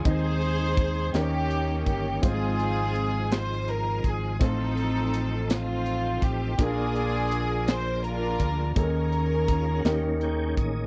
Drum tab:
HH |xxxxxx|xxxxxx|xxxxxx|xxxxxx|
SD |---o--|---o--|---o--|---o--|
BD |o-o--o|o----o|o----o|o----o|

HH |xxxxxx|
SD |---o--|
BD |o-o--o|